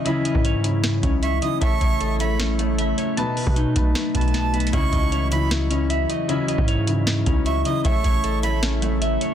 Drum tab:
HH |x-----x-----x-----x-----x-----x-----x-----x-----|x-----x-----x-----x-----x-----x-----x-----x-----|x-----o-----x-----x-----x-----x-x-x-x-----x-x-x-|x-----x-----x-----x-----x-----x-----x-----x-----|
SD |------------------------o-----------------------|------------------------o-----------------------|------------------------o-----------o-----------|------------------------o-----------------------|
BD |---------o--------------------o-----------------|o-----o-----------------------------------------|---------o--------o-----------o-----------------|o-----o-----------------------------------------|

HH |x-----x-----x-----x-----x-----x-----x-----x-----|x-----x-----x-----x-----x-----x-----x-----x-----|
SD |------------------------o-----------------------|------------------------o-----------------------|
BD |---------o--------------------o-----------------|o-----o-----------------------------------------|